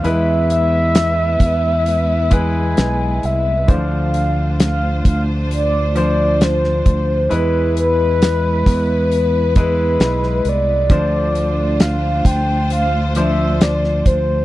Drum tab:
HH |x-x-x-x-x-x-x-x-|x-x-x-x-x-x-x-x-|x-x-x-x-x-x-x-x-|x-x-x-x-x-x-x-x-|
SD |----o-------o---|----o-------oo--|----o-------oo--|----o-------oo--|
BD |------o---o-----|o-----o-------o-|------o---o-----|o-----o-------o-|